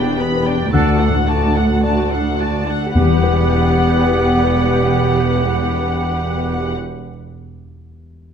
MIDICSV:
0, 0, Header, 1, 12, 480
1, 0, Start_track
1, 0, Key_signature, 1, "minor"
1, 0, Tempo, 1048951
1, 331, Tempo, 1111111
1, 1291, Time_signature, 4, 2, 24, 8
1, 1291, Tempo, 1061947
1, 2731, Tempo, 1094891
1, 3699, End_track
2, 0, Start_track
2, 0, Title_t, "Violin section"
2, 0, Program_c, 0, 48
2, 0, Note_on_c, 0, 79, 35
2, 89, Note_off_c, 0, 79, 0
2, 89, Note_on_c, 0, 83, 37
2, 209, Note_off_c, 0, 83, 0
2, 210, Note_on_c, 0, 79, 36
2, 332, Note_off_c, 0, 79, 0
2, 333, Note_on_c, 0, 81, 38
2, 442, Note_off_c, 0, 81, 0
2, 451, Note_on_c, 0, 78, 39
2, 570, Note_off_c, 0, 78, 0
2, 574, Note_on_c, 0, 81, 38
2, 691, Note_off_c, 0, 81, 0
2, 693, Note_on_c, 0, 78, 35
2, 811, Note_off_c, 0, 78, 0
2, 813, Note_on_c, 0, 81, 37
2, 924, Note_off_c, 0, 81, 0
2, 940, Note_on_c, 0, 78, 33
2, 1058, Note_off_c, 0, 78, 0
2, 1062, Note_on_c, 0, 81, 33
2, 1179, Note_off_c, 0, 81, 0
2, 1185, Note_on_c, 0, 78, 31
2, 1297, Note_off_c, 0, 78, 0
2, 1302, Note_on_c, 0, 78, 46
2, 3001, Note_off_c, 0, 78, 0
2, 3699, End_track
3, 0, Start_track
3, 0, Title_t, "Flute section"
3, 0, Program_c, 1, 73
3, 332, Note_on_c, 1, 78, 44
3, 553, Note_off_c, 1, 78, 0
3, 1294, Note_on_c, 1, 78, 47
3, 2993, Note_off_c, 1, 78, 0
3, 3699, End_track
4, 0, Start_track
4, 0, Title_t, "Violin section"
4, 0, Program_c, 2, 48
4, 0, Note_on_c, 2, 74, 36
4, 89, Note_on_c, 2, 71, 35
4, 91, Note_off_c, 2, 74, 0
4, 208, Note_off_c, 2, 71, 0
4, 209, Note_on_c, 2, 74, 35
4, 330, Note_off_c, 2, 74, 0
4, 336, Note_on_c, 2, 74, 41
4, 444, Note_off_c, 2, 74, 0
4, 450, Note_on_c, 2, 69, 36
4, 569, Note_off_c, 2, 69, 0
4, 572, Note_on_c, 2, 74, 37
4, 689, Note_on_c, 2, 69, 32
4, 690, Note_off_c, 2, 74, 0
4, 809, Note_off_c, 2, 69, 0
4, 811, Note_on_c, 2, 74, 34
4, 923, Note_off_c, 2, 74, 0
4, 934, Note_on_c, 2, 69, 34
4, 1054, Note_on_c, 2, 74, 30
4, 1055, Note_off_c, 2, 69, 0
4, 1174, Note_on_c, 2, 69, 33
4, 1175, Note_off_c, 2, 74, 0
4, 1291, Note_off_c, 2, 69, 0
4, 1293, Note_on_c, 2, 71, 51
4, 2993, Note_off_c, 2, 71, 0
4, 3699, End_track
5, 0, Start_track
5, 0, Title_t, "Cor anglais"
5, 0, Program_c, 3, 69
5, 333, Note_on_c, 3, 69, 42
5, 519, Note_off_c, 3, 69, 0
5, 1295, Note_on_c, 3, 67, 43
5, 2994, Note_off_c, 3, 67, 0
5, 3699, End_track
6, 0, Start_track
6, 0, Title_t, "Grand piano"
6, 0, Program_c, 4, 0
6, 0, Control_c, 4, 64, 127
6, 0, Note_on_c, 4, 40, 44
6, 0, Note_on_c, 4, 47, 35
6, 0, Note_on_c, 4, 62, 34
6, 0, Note_on_c, 4, 71, 36
6, 12, Note_on_c, 4, 67, 34
6, 103, Note_off_c, 4, 71, 0
6, 168, Note_on_c, 4, 71, 31
6, 266, Note_off_c, 4, 67, 0
6, 315, Note_off_c, 4, 40, 0
6, 331, Note_off_c, 4, 71, 0
6, 337, Note_on_c, 4, 38, 45
6, 343, Control_c, 4, 64, 0
6, 347, Note_off_c, 4, 47, 0
6, 347, Note_off_c, 4, 62, 0
6, 430, Control_c, 4, 64, 127
6, 491, Note_on_c, 4, 45, 30
6, 653, Note_on_c, 4, 62, 33
6, 746, Note_off_c, 4, 45, 0
6, 811, Note_on_c, 4, 74, 34
6, 908, Note_off_c, 4, 62, 0
6, 973, Note_on_c, 4, 66, 33
6, 1070, Note_off_c, 4, 74, 0
6, 1139, Note_on_c, 4, 74, 30
6, 1231, Note_off_c, 4, 66, 0
6, 1277, Note_off_c, 4, 38, 0
6, 1293, Note_on_c, 4, 40, 38
6, 1294, Note_off_c, 4, 74, 0
6, 1302, Control_c, 4, 64, 0
6, 1325, Note_on_c, 4, 52, 39
6, 1357, Note_on_c, 4, 55, 35
6, 1389, Note_on_c, 4, 67, 36
6, 1394, Control_c, 4, 64, 127
6, 1421, Note_on_c, 4, 71, 39
6, 1452, Note_on_c, 4, 78, 40
6, 2993, Note_off_c, 4, 40, 0
6, 3024, Note_off_c, 4, 52, 0
6, 3054, Note_off_c, 4, 55, 0
6, 3086, Note_off_c, 4, 67, 0
6, 3117, Note_off_c, 4, 71, 0
6, 3146, Note_off_c, 4, 78, 0
6, 3699, End_track
7, 0, Start_track
7, 0, Title_t, "French horn section"
7, 0, Program_c, 5, 60
7, 0, Note_on_c, 5, 59, 69
7, 0, Note_on_c, 5, 67, 53
7, 314, Note_off_c, 5, 59, 0
7, 332, Note_off_c, 5, 67, 0
7, 336, Note_on_c, 5, 57, 42
7, 337, Note_on_c, 5, 66, 43
7, 1097, Note_off_c, 5, 57, 0
7, 1097, Note_off_c, 5, 66, 0
7, 1290, Note_on_c, 5, 55, 45
7, 1291, Note_on_c, 5, 67, 47
7, 2990, Note_off_c, 5, 55, 0
7, 2990, Note_off_c, 5, 67, 0
7, 3699, End_track
8, 0, Start_track
8, 0, Title_t, "Viola section"
8, 0, Program_c, 6, 48
8, 0, Note_on_c, 6, 62, 41
8, 87, Note_on_c, 6, 59, 40
8, 89, Note_off_c, 6, 62, 0
8, 208, Note_off_c, 6, 59, 0
8, 209, Note_on_c, 6, 62, 33
8, 330, Note_on_c, 6, 66, 38
8, 331, Note_off_c, 6, 62, 0
8, 440, Note_off_c, 6, 66, 0
8, 450, Note_on_c, 6, 62, 36
8, 569, Note_off_c, 6, 62, 0
8, 571, Note_on_c, 6, 66, 35
8, 690, Note_off_c, 6, 66, 0
8, 690, Note_on_c, 6, 62, 31
8, 810, Note_off_c, 6, 62, 0
8, 810, Note_on_c, 6, 66, 37
8, 922, Note_off_c, 6, 66, 0
8, 927, Note_on_c, 6, 62, 34
8, 1052, Note_off_c, 6, 62, 0
8, 1052, Note_on_c, 6, 66, 34
8, 1174, Note_off_c, 6, 66, 0
8, 1174, Note_on_c, 6, 62, 34
8, 1291, Note_off_c, 6, 62, 0
8, 1291, Note_on_c, 6, 67, 46
8, 2991, Note_off_c, 6, 67, 0
8, 3699, End_track
9, 0, Start_track
9, 0, Title_t, "Clarinet"
9, 0, Program_c, 7, 71
9, 333, Note_on_c, 7, 62, 45
9, 519, Note_off_c, 7, 62, 0
9, 1295, Note_on_c, 7, 59, 55
9, 2994, Note_off_c, 7, 59, 0
9, 3699, End_track
10, 0, Start_track
10, 0, Title_t, "Cello section"
10, 0, Program_c, 8, 48
10, 0, Note_on_c, 8, 40, 56
10, 313, Note_off_c, 8, 40, 0
10, 334, Note_on_c, 8, 38, 43
10, 1163, Note_off_c, 8, 38, 0
10, 1293, Note_on_c, 8, 40, 49
10, 2992, Note_off_c, 8, 40, 0
10, 3699, End_track
11, 0, Start_track
11, 0, Title_t, "Timpani"
11, 0, Program_c, 10, 47
11, 1293, Note_on_c, 10, 40, 34
11, 2992, Note_off_c, 10, 40, 0
11, 3699, End_track
12, 0, Start_track
12, 0, Title_t, "Double bass section"
12, 0, Program_c, 11, 48
12, 0, Note_on_c, 11, 28, 66
12, 315, Note_off_c, 11, 28, 0
12, 334, Note_on_c, 11, 38, 50
12, 1163, Note_off_c, 11, 38, 0
12, 1293, Note_on_c, 11, 28, 51
12, 2993, Note_off_c, 11, 28, 0
12, 3699, End_track
0, 0, End_of_file